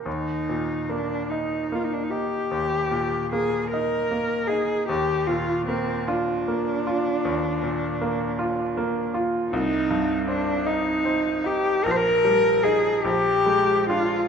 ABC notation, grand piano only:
X:1
M:12/8
L:1/8
Q:3/8=50
K:Eb
V:1 name="Grand piano"
E,, B,, B, E B, E E,, B,, B, E B, E | E,, B,, B, F B, F E,, B,, B, F B, F | C,, G,, C E C E B,,, G, E B,,, A, [DF] |]